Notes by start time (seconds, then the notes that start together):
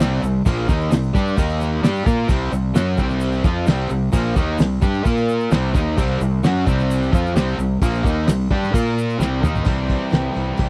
0.00 C2 C3 G3 C4, snare, open hi-hat, shaker
0.22 C2 C3 G3, shaker
0.45 A#1 A#2 F3 A#3, kick, open hi-hat, shaker
0.68 D#2 D#3 A#3 D#4, kick, shaker
0.80 shaker
0.91 C2 C3 G3, snare, open hi-hat, shaker
1.03 shaker
1.13 G2 G3 D4 G4, kick, shaker
1.27 shaker
1.36 D#2 D#3 A#3 D#4, kick, open hi-hat, shaker
1.49 shaker
1.61 snare, shaker
1.83 G2 G3 D4 G4, snare, open hi-hat, shaker
1.96 shaker
2.05 A#2 A#3 F4 A#4, kick, shaker
2.28 C2 C3 G3 C4, kick, open hi-hat, shaker
2.52 C2 C3 G3, shaker
2.74 F#2 F#3 C#4 F#4, snare, open hi-hat, shaker
2.98 C2 C3 G3 C4, kick, shaker
3.10 snare, shaker
3.21 open hi-hat, shaker
3.32 shaker
3.44 F2 F3 C4 F4, kick, snare, shaker
3.66 C2 C3 G3 C4, snare, open hi-hat, shaker
3.90 C2 C3 G3, shaker
4.12 A#1 A#2 F3 A#3, kick, open hi-hat, shaker
4.36 D#2 D#3 A#3 D#4, kick, shaker
4.59 C2 C3 G3, snare, open hi-hat, shaker
4.81 G2 G3 D4 G4, kick, shaker
4.94 shaker
5.05 A#2 A#3 F4 A#4, kick, open hi-hat, shaker
5.17 shaker
5.29 shaker
5.40 shaker
5.51 C2 C3 G3 C4, snare, open hi-hat, shaker
5.74 D#2 D#3 A#3 D#4, kick, shaker
5.97 C2 C3 G3 C4, kick, open hi-hat, shaker
6.21 C2 C3 G3, shaker
6.43 F#2 F#3 C#4 F#4, snare, open hi-hat, shaker
6.66 C2 C3 G3 C4, kick, shaker
6.79 snare, shaker
6.91 open hi-hat, shaker
7.03 shaker
7.12 F2 F3 C4 F4, kick, shaker
7.26 shaker
7.35 C2 C3 G3 C4, snare, open hi-hat, shaker
7.58 C2 C3 G3, shaker
7.82 A#1 A#2 F3 A#3, kick, open hi-hat, shaker
7.95 shaker
8.04 D#2 D#3 A#3 D#4, kick, shaker
8.27 C2 C3 G3, snare, open hi-hat, shaker
8.51 G2 G3 D4 G4, kick
8.63 snare, shaker
8.73 A#2 A#3 F4 A#4, kick, open hi-hat, shaker
8.87 shaker
8.99 shaker
9.10 shaker
9.18 C2 C3 G3 C4, snare, shaker
9.42 D#2 D#3 A#3 D#4, mid tom, shaker
9.55 floor tom, shaker
9.65 C2 C3 E3 G3 C4 E4 G4, kick, open hi-hat
9.88 G3 C4 G4, kick, open hi-hat
10.10 C2 E3 G3 C4 G4, snare, open hi-hat
10.34 C2 G3 C4 G4, open hi-hat
10.57 C2 C3 E3 G3 C4 G4, kick, open hi-hat